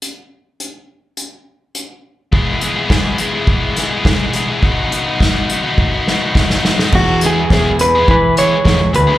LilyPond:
<<
  \new Staff \with { instrumentName = "Clean electric guitar" } { \time 4/4 \key e \major \tempo 4 = 104 r1 | r1 | r1 | fis'8 gis'4 b'8 b'8 cis''4 b'8 | }
  \new Staff \with { instrumentName = "Overdriven electric guitar" } { \time 4/4 \key e \major r1 | <e, b, e gis b gis'>8 <e gis b gis'>16 <e gis b gis'>16 <e, b, e gis b gis'>8 <e gis b gis'>16 <e gis b gis'>8. <e gis b gis'>16 <e gis b gis'>16 <e, b, e gis b gis'>8 <e gis b gis'>16 <e gis b gis'>16 | <dis b dis' fis'>8 <dis b dis' fis'>16 <b dis' fis'>16 <dis b dis' fis'>8 <dis b dis' fis'>16 <b dis' fis'>8. <dis b dis' fis'>16 <b dis' fis'>16 <dis b dis' fis'>8 <dis b dis' fis'>16 <b dis' fis'>16 | r8 <e gis b gis'>16 r16 <e gis b gis'>16 r8 <e gis b gis'>16 r8 <e gis b gis'>16 r16 <e gis b gis'>16 r8 <e gis b gis'>16 | }
  \new Staff \with { instrumentName = "Picked electric bass" } { \clef bass \time 4/4 \key e \major r1 | r1 | r1 | e,4 e,4 e4 e,8 d,16 r16 | }
  \new DrumStaff \with { instrumentName = "Drums" } \drummode { \time 4/4 hh4 hh4 hh4 hh4 | bd8 hh8 <bd sn>8 hh8 bd8 <hh sn>8 <bd sn>8 hh8 | bd8 hh8 <bd sn>8 hh8 bd8 sn8 <bd sn>16 sn16 sn16 sn16 | <cymc bd>8 hh8 <bd sn>8 hh8 bd8 hh8 <bd sn>8 hh8 | }
>>